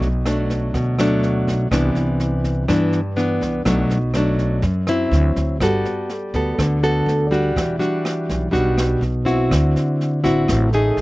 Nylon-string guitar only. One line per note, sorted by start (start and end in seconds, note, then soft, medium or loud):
0.00 0.71 B2 medium
0.26 0.95 F#3 medium
0.26 0.95 A3 medium
0.26 0.95 D4 medium
0.74 1.69 B2 medium
0.99 1.68 F#3 medium
0.99 1.68 A3 medium
0.99 1.68 D4 medium
1.71 2.66 C3 medium
1.71 2.65 E3 medium
1.71 2.65 B3 medium
1.71 2.65 D4 medium
2.68 3.63 G2 medium
2.68 3.00 E3 medium
2.68 3.00 B3 medium
2.68 3.00 D4 medium
3.16 3.62 E3 medium
3.16 3.62 B3 medium
3.16 3.62 D4 medium
3.65 4.61 B2 medium
3.65 3.97 F#3 medium
3.65 3.97 A3 medium
3.65 3.97 D4 medium
4.15 4.63 F#3 medium
4.15 4.64 A3 medium
4.15 4.64 D4 medium
4.65 5.11 F#2 medium
4.88 5.57 F#3 medium
4.88 5.57 C4 medium
4.88 5.57 E4 medium
5.62 6.56 G3 medium
5.62 6.10 B3 medium
5.62 6.10 F#4 medium
5.62 6.10 A4 medium
6.34 6.79 B3 medium
6.34 6.79 F#4 medium
6.34 6.80 A4 medium
6.59 7.54 D3 medium
6.83 7.28 B3 medium
6.83 7.28 F#4 medium
6.83 7.28 A4 medium
7.31 7.76 G3 medium
7.31 7.77 D4 medium
7.31 7.77 F#4 medium
7.56 8.51 E3 medium
7.79 8.49 G3 medium
7.79 8.49 D4 medium
7.79 8.49 F#4 medium
8.51 9.48 B2 medium
8.51 9.01 G3 medium
8.51 9.01 D4 medium
8.51 9.02 F#4 medium
9.25 10.20 C4 medium
9.25 10.20 E4 medium
9.25 10.20 F#4 medium
9.50 10.46 D3 medium
10.24 10.69 C4 medium
10.24 10.69 E4 medium
10.24 10.69 F#4 medium
10.49 10.95 A2 medium
10.74 11.01 A3 medium
10.74 11.01 D#4 medium
10.74 11.01 G#4 medium